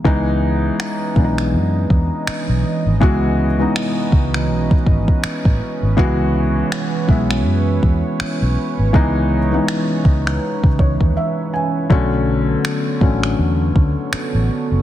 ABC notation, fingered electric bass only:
X:1
M:4/4
L:1/16
Q:"Swing 16ths" 1/4=81
K:C#m
V:1 name="Fingered electric bass" clef=bass
C,,4 z2 B,,,2 F,,2 E,, z2 B,,, z G,,, | C,,4 z2 C,,2 B,,,2 G,,, z2 A,,, z G,,, | C,,4 z2 B,,,2 F,,2 E,, z2 B,,, z G,,, | C,,4 z2 C,,2 z C, C,, D,, z4 |
B,,,4 z2 A,,,2 E,,2 =D,, z2 A,,, z F,,, |]